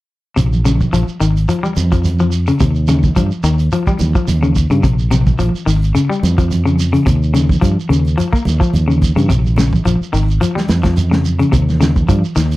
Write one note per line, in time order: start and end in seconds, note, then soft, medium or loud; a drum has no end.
0.36 0.86 A#1 medium
0.36 0.61 C3 medium
0.36 kick medium
0.36 closed hi-hat medium
0.36 shekere medium
0.52 high conga medium
0.52 shekere soft
0.65 0.89 C#3 medium
0.65 closed hi-hat soft
0.65 high conga medium
0.65 shekere medium
0.80 kick medium
0.80 high conga medium
0.80 shekere soft
0.93 1.06 A#1 medium
0.93 1.17 F3 medium
0.93 closed hi-hat medium
0.93 shekere medium
1.08 muted fingered electric bass stroke soft
1.08 shekere soft
1.20 1.46 G#1 medium
1.20 1.45 D#3 medium
1.20 closed hi-hat soft
1.20 shekere medium
1.37 closed hi-hat soft
1.37 shekere soft
1.49 1.62 F3 medium
1.49 closed hi-hat medium
1.49 shekere medium
1.63 1.88 G3 medium
1.63 high conga medium
1.63 shekere soft
1.76 2.50 F2 medium
1.76 closed hi-hat soft
1.76 high conga medium
1.76 shekere medium
1.92 2.16 F3 medium
1.92 kick medium
1.92 closed hi-hat soft
1.92 shekere soft
2.04 closed hi-hat medium
2.04 high conga medium
2.04 shekere medium
2.19 2.44 F3 medium
2.19 shekere soft
2.32 closed hi-hat soft
2.32 shekere medium
2.47 2.59 C#3 medium
2.47 closed hi-hat soft
2.47 shekere soft
2.60 3.09 D#2 medium
2.60 2.85 C3 medium
2.60 kick medium
2.60 closed hi-hat medium
2.60 shekere medium
2.75 shekere soft
2.88 3.13 C#3 medium
2.88 closed hi-hat soft
2.88 high conga medium
2.88 shekere medium
3.03 kick medium
3.03 high conga medium
3.03 shekere soft
3.16 3.30 G2 medium
3.16 3.40 F3 medium
3.16 kick medium
3.16 closed hi-hat medium
3.16 shekere medium
3.31 shekere soft
3.44 3.68 D#2 medium
3.44 3.68 D#3 medium
3.44 closed hi-hat soft
3.44 shekere medium
3.59 closed hi-hat soft
3.59 shekere soft
3.72 3.85 F3 medium
3.72 closed hi-hat medium
3.72 shekere medium
3.87 4.11 G3 medium
3.87 kick medium
3.87 high conga medium
3.87 shekere soft
3.99 4.13 D#2 medium
3.99 closed hi-hat soft
3.99 high conga medium
3.99 shekere medium
4.15 4.39 F3 medium
4.15 kick medium
4.15 shekere soft
4.28 4.66 D#2 medium
4.28 closed hi-hat medium
4.28 high conga medium
4.28 shekere medium
4.43 4.67 C#3 medium
4.43 shekere soft
4.56 kick medium
4.56 closed hi-hat soft
4.56 shekere medium
4.70 4.82 G2 medium
4.70 4.82 C#3 medium
4.70 closed hi-hat soft
4.70 shekere soft
4.83 5.32 A#1 medium
4.83 5.08 C3 medium
4.83 kick medium
4.83 closed hi-hat medium
4.83 shekere medium
4.99 shekere soft
5.11 5.35 C3 medium
5.11 closed hi-hat soft
5.11 high conga medium
5.11 shekere medium
5.26 kick medium
5.26 high conga medium
5.26 shekere soft
5.39 5.53 A#1 medium
5.39 5.63 F3 medium
5.39 closed hi-hat medium
5.39 shekere medium
5.54 muted fingered electric bass stroke soft
5.54 shekere soft
5.66 5.92 G#1 medium
5.66 5.91 D#3 medium
5.66 open hi-hat medium
5.66 shekere medium
5.82 closed hi-hat soft
5.82 shekere soft
5.95 6.08 C#3 medium
5.95 closed hi-hat medium
5.95 shekere medium
6.09 6.34 G3 medium
6.09 shekere soft
6.23 6.96 F2 medium
6.23 closed hi-hat soft
6.23 high conga medium
6.23 shekere medium
6.38 6.62 F3 medium
6.38 kick medium
6.38 closed hi-hat soft
6.38 shekere soft
6.51 closed hi-hat medium
6.51 high conga medium
6.51 shekere medium
6.65 6.90 C#3 medium
6.65 shekere soft
6.78 closed hi-hat soft
6.78 high conga medium
6.78 shekere medium
6.93 7.05 C#3 medium
6.93 closed hi-hat medium
6.93 shekere soft
7.06 7.56 D#2 medium
7.06 7.30 C3 medium
7.06 kick medium
7.06 closed hi-hat medium
7.06 shekere medium
7.23 shekere soft
7.34 7.58 C#3 medium
7.34 closed hi-hat soft
7.34 high conga medium
7.34 shekere medium
7.49 kick medium
7.49 high conga medium
7.49 shekere soft
7.61 7.76 G2 medium
7.61 7.86 F3 medium
7.61 kick medium
7.61 closed hi-hat medium
7.61 shekere medium
7.80 shekere soft
7.89 8.15 D#2 medium
7.89 8.14 C#3 medium
7.89 closed hi-hat soft
7.89 shekere medium
8.05 closed hi-hat soft
8.05 shekere soft
8.18 8.31 F3 medium
8.18 closed hi-hat medium
8.18 shekere medium
8.33 8.57 A#3 medium
8.33 kick medium
8.33 shekere soft
8.45 8.60 D#2 medium
8.45 closed hi-hat soft
8.45 high conga medium
8.45 shekere medium
8.60 8.85 F3 medium
8.60 kick medium
8.60 shekere soft
8.73 9.11 D#2 medium
8.73 closed hi-hat medium
8.73 high conga medium
8.73 shekere medium
8.88 9.12 C#3 medium
8.88 shekere soft
9.01 kick medium
9.01 closed hi-hat soft
9.01 high conga medium
9.01 shekere medium
9.16 9.28 G2 medium
9.16 9.28 C#3 medium
9.16 closed hi-hat soft
9.16 shekere soft
9.29 9.79 A#1 medium
9.29 9.54 C3 medium
9.29 kick medium
9.29 closed hi-hat soft
9.29 shekere medium
9.45 high conga medium
9.45 shekere soft
9.56 9.82 C#3 medium
9.56 snare medium
9.56 closed hi-hat soft
9.56 high conga medium
9.56 shekere medium
9.72 kick medium
9.72 high conga medium
9.72 shekere soft
9.85 9.99 A#1 medium
9.85 10.10 F3 medium
9.85 closed hi-hat medium
9.85 shekere medium
10.01 muted fingered electric bass stroke soft
10.01 shekere soft
10.13 10.38 G#1 medium
10.13 10.37 D#3 medium
10.13 open hi-hat medium
10.13 shekere medium
10.28 closed hi-hat soft
10.28 shekere soft
10.41 10.54 F3 medium
10.41 closed hi-hat medium
10.41 shekere medium
10.55 10.80 G3 medium
10.55 snare soft
10.55 high conga medium
10.55 shekere soft
10.68 11.43 F2 medium
10.68 snare medium
10.68 closed hi-hat soft
10.68 high conga medium
10.68 shekere medium
10.83 11.08 F3 medium
10.83 kick medium
10.83 snare medium
10.83 closed hi-hat soft
10.83 shekere soft
10.96 closed hi-hat medium
10.96 high conga medium
10.96 shekere medium
11.11 11.36 C#3 medium
11.11 snare medium
11.11 shekere soft
11.24 closed hi-hat soft
11.24 high conga medium
11.24 shekere medium
11.39 11.51 C#3 medium
11.39 closed hi-hat medium
11.39 shekere soft
11.52 12.02 D#2 medium
11.52 11.76 C3 medium
11.52 kick medium
11.52 closed hi-hat medium
11.52 shekere medium
11.69 snare soft
11.69 high conga medium
11.69 shekere soft
11.81 12.05 C#3 medium
11.81 snare medium
11.81 closed hi-hat soft
11.81 high conga medium
11.81 shekere medium
11.96 kick medium
11.96 high conga medium
11.96 shekere soft
12.09 12.22 G2 medium
12.09 12.33 F3 medium
12.09 kick medium
12.09 closed hi-hat medium
12.09 shekere medium
12.24 shekere soft
12.36 12.57 D#2 medium
12.36 12.57 D#3 medium
12.36 snare soft
12.36 closed hi-hat soft
12.36 shekere medium
12.51 closed hi-hat soft
12.51 shekere soft